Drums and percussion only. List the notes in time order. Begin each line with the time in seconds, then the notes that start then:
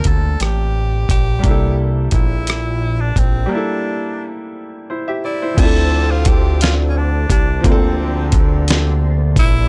0.04 kick, closed hi-hat
0.40 cross-stick, closed hi-hat
1.09 kick, closed hi-hat
1.44 kick, closed hi-hat
2.11 kick, closed hi-hat
2.47 cross-stick, closed hi-hat
3.16 kick, closed hi-hat
5.58 kick, closed hi-hat, crash
6.25 kick, closed hi-hat
6.61 snare, closed hi-hat
7.30 kick, closed hi-hat
7.64 kick, closed hi-hat
8.32 kick, closed hi-hat
8.68 snare, closed hi-hat
9.36 kick, closed hi-hat